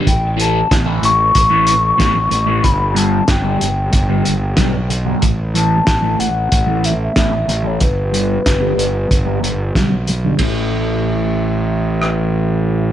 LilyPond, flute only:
\new Staff \with { instrumentName = "Flute" } { \time 4/4 \key a \mixolydian \tempo 4 = 93 g''8 a''8 r8 cis'''2~ cis'''8 | b''8 a''8 g''2~ g''8 r8 | r8 a''4 fis''4 e''16 e''4 cis''16 | b'2. r4 |
e''1 | }